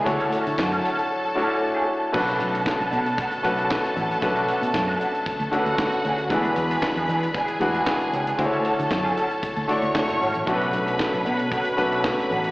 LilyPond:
<<
  \new Staff \with { instrumentName = "String section" } { \time 4/4 \key b \dorian \tempo 4 = 115 <a' a''>1 | <a' a''>1~ | <a' a''>2~ <a' a''>8 <fis' fis''>4. | <b' b''>2 <gis' gis''>2 |
<a' a''>2~ <a' a''>8 <cis'' cis'''>4. | <b' b''>1 | }
  \new Staff \with { instrumentName = "Clean electric guitar" } { \time 4/4 \key b \dorian r16 <cis' fis' a'>16 <cis' fis' a'>16 r8 <cis' fis' a'>16 <cis' fis' a'>16 r8. <cis' fis' a'>16 <cis' fis' a'>16 r16 <cis' fis' a'>8 r16 | <d' fis' a'>8 r16 <d' fis' a'>16 r16 <d' fis' a'>16 <d' fis' a'>16 r16 <d' fis' a'>16 r8 <d' fis' a'>16 r8 <d' fis' a'>16 <d' fis' a'>16 | r16 <d' fis' a'>16 <d' fis' a'>16 r8 <d' fis' a'>16 <d' fis' a'>16 r8. <d' fis' a'>16 <d' fis' a'>16 r8 <d' fis' a'>8 | <b d' gis'>8 r16 <b d' gis'>16 r16 <b d' gis'>16 <b d' gis'>16 r16 <b d' gis'>16 r8 <b d' gis'>16 r8 <b d' gis'>16 <b d' gis'>16 |
r16 <cis' fis' a'>16 <cis' fis' a'>16 r8 <cis' fis' a'>16 <cis' fis' a'>16 r4. r16 <cis' fis' a'>16 r16 | <d' fis' a'>8 r16 <d' fis' a'>16 r16 <d' fis' a'>16 <d' fis' a'>16 r16 <d' fis' a'>16 r8 <d' fis' a'>16 r8 <d' fis' a'>16 <d' fis' a'>16 | }
  \new Staff \with { instrumentName = "Grand piano" } { \time 4/4 \key b \dorian <a d' e' fis' cis''>4. r4 <a d' e' fis' cis''>4~ <a d' e' fis' cis''>16 r16 | <a cis' d' fis' b'>4. r4 <a cis' d' fis' b'>4~ <a cis' d' fis' b'>16 r16 | <a cis' d' fis' b'>4. r4 <a cis' d' fis' a' b'>4~ <a cis' d' fis' a' b'>16 r16 | <gis d' e' fis' b'>4. r4 <gis d' e' fis' b'>4~ <gis d' e' fis' b'>16 r16 |
<a d' e' fis' c'' cis''>4. r4 <a d' e' fis' d''>4~ <a d' e' fis' d''>16 r16 | <a cis' d' fis' a' b'>4. r4 <a cis' d' fis' b'>4~ <a cis' d' fis' b'>16 r16 | }
  \new Staff \with { instrumentName = "French horn section" } { \time 4/4 \key b \dorian <d fis a fis' cis''>1 | r1 | r1 | r1 |
r1 | <d fis a b fis'>1 | }
  \new Staff \with { instrumentName = "Fingered electric bass" } { \clef bass \time 4/4 \key b \dorian d,8 r16 d16 fis,8 r2 r8 | b,,8 b,,8 r16 b,,16 b,8 r8 b,,8 r8 a,,8 | b,,8 r16 b,16 fis,8 r8. d,16 r16 d,16 r8 d,8 | e,8 e,8 r16 e,16 e8 r8 e,8 r8 cis,8 |
d,8 r16 d16 fis,8 r8. d,16 r16 d,16 r16 fis,,16 gis,,16 a,,16 | b,,8 b,,8 r16 b,,16 b,8 r8 b,,8 r8 a,,8 | }
  \new DrumStaff \with { instrumentName = "Drums" } \drummode { \time 4/4 <hh bd>16 hh16 hh16 hh16 <hc bd sn>16 hh16 hh16 hh16 r4 r4 | <cymc bd>16 hh16 hh16 hh16 <hc bd sn>16 hh16 hh16 hh16 <hh bd>16 hh16 hh16 hh16 <hc bd sn>16 <hh sn>16 hh16 hh16 | <hh bd>16 hh16 hh16 hh16 <hc bd sn>16 hh16 hh16 hh16 <hh bd>16 hh16 hh16 hh16 <hc bd sn>16 hh16 hh16 hh16 | <hh bd>16 hh16 hh16 hh16 <hc bd sn>16 hh16 hh16 hh16 <hh bd>16 hh16 hh16 hh16 <hc bd sn>16 hh16 hh16 hh16 |
<hh bd>16 hh16 hh16 hh16 <hc bd sn>16 hh16 hh16 hh16 <hh bd>16 hh16 hh16 hh16 <hc bd sn>16 <hh sn>16 hho16 hh16 | <hh bd>16 hh16 hh16 hh16 <hc bd sn>16 hh16 hh16 hh16 <hh bd>16 hh16 hh16 hh16 <hc bd sn>16 <hh sn>16 hh16 hh16 | }
>>